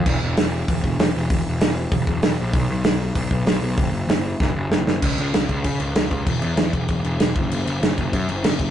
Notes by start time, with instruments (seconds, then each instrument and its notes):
0.06 picked electric bass E1, kick, crash
0.23 picked electric bass E1
0.37 picked electric bass E1, snare, open hi-hat
0.68 picked electric bass E1, kick, open hi-hat
0.83 picked electric bass E1, kick
0.99 picked electric bass E1, snare, open hi-hat
1.15 picked electric bass E1
1.30 picked electric bass E1, kick, open hi-hat
1.48 picked electric bass E1
1.61 picked electric bass E1, snare, open hi-hat
1.91 picked electric bass E1, kick, open hi-hat
2.07 picked electric bass E1, kick
2.22 picked electric bass E1, snare, open hi-hat
2.40 picked electric bass A#1
2.53 picked electric bass B1, kick, open hi-hat
2.70 picked electric bass B1
2.84 picked electric bass B1, snare, open hi-hat
3.15 picked electric bass B1, kick, open hi-hat
3.31 picked electric bass B1, kick
3.46 picked electric bass B1, snare, open hi-hat
3.62 picked electric bass B1
3.77 picked electric bass F#1, kick, open hi-hat
3.92 picked electric bass F#1
4.08 picked electric bass F#1, snare, open hi-hat
4.40 picked electric bass F#1, kick, snare
4.56 picked electric bass F#1
4.71 picked electric bass F#1, snare
4.87 picked electric bass F#1, snare
5.02 picked electric bass C#2, kick, crash
5.18 picked electric bass C#2, crash
5.34 picked electric bass C#2, snare, crash
5.49 picked electric bass C#2, kick, crash
5.64 picked electric bass C#3, kick, crash
5.80 picked electric bass C#2, crash
5.95 picked electric bass C#2, snare, crash
6.11 picked electric bass C#2, kick, crash
6.27 picked electric bass E1, kick, crash
6.42 picked electric bass E2, crash
6.56 picked electric bass E2, snare, crash
6.73 picked electric bass E1, kick, crash
6.88 picked electric bass E1, kick, crash
7.03 picked electric bass E1, crash
7.19 picked electric bass E1, snare, crash
7.36 picked electric bass F#1, kick, crash
7.51 picked electric bass F#1, crash
7.67 picked electric bass F#1, crash
7.82 picked electric bass F#1, snare, crash
7.98 picked electric bass F#1, kick, crash
8.13 picked electric bass F#2, kick, crash
8.28 picked electric bass F#1, crash
8.44 picked electric bass F#1, snare, crash
8.59 picked electric bass F#1, kick, crash